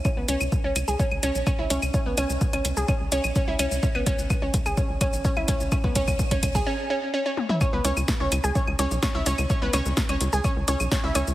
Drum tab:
HH |--x---x---x---x-|--x--xx---x---x-|--x---x---x---x-|--x--xx---------|
SH |x-xxx-xxx-xxx-xx|x-xxx-xxx-xxx-xx|x-xxx-xxx-xxx-xx|x-xxx-xx--------|
CL |x--x--x--x--x--x|--x--x--x--x--x-|-x--x--x--x--x--|x--x--x---------|
SD |----------------|----------------|----------------|----------------|
T1 |----------------|----------------|----------------|--------------o-|
T2 |----------------|----------------|----------------|---------------o|
BD |o---o---o---o---|o---o---o---o---|o-o-o-o-o-o-o-o-|oooooooo--------|

HH |--x---x---x---x-|--x--xx---x---x-|
SH |x-xxx-xxx-xxx-xx|x-xxx-xxx-xxx-xx|
CL |x--x--x--x--x--x|--x--x--x--x--x-|
SD |----o-------o---|--o-o-------o---|
T1 |----------------|----------------|
T2 |----------------|----------------|
BD |o---o---o---o---|o---o---o---o---|